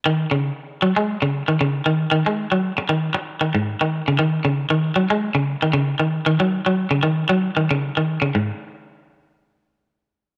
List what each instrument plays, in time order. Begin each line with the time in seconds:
0.06 clean electric guitar D#3
0.31 clean electric guitar C#3
0.82 clean electric guitar F#3
0.96 clean electric guitar G#3
1.22 clean electric guitar C#3
1.48 clean electric guitar D#3
1.61 clean electric guitar C#3
1.86 clean electric guitar D#3
2.11 clean electric guitar D#3
2.26 clean electric guitar G#3
2.52 clean electric guitar F#3
2.78 muted clean electric guitar stroke
2.89 clean electric guitar D#3
3.15 muted clean electric guitar stroke
3.41 clean electric guitar D#3
3.55 clean electric guitar G#2
3.81 clean electric guitar D#3
4.08 clean electric guitar C#3
4.19 clean electric guitar D#3
4.45 clean electric guitar C#3
4.70 clean electric guitar D#3
4.96 clean electric guitar F#3
5.10 clean electric guitar G#3
5.35 clean electric guitar C#3
5.62 clean electric guitar D#3
5.73 clean electric guitar C#3
6.00 clean electric guitar D#3
6.26 clean electric guitar D#3
6.40 clean electric guitar F#3
6.66 clean electric guitar F#3
6.91 clean electric guitar C#3
7.03 clean electric guitar D#3
7.29 clean electric guitar F#3
7.57 clean electric guitar D#3
7.71 clean electric guitar C#3
7.97 clean electric guitar D#3
8.22 clean electric guitar C#3
8.35 clean electric guitar G#2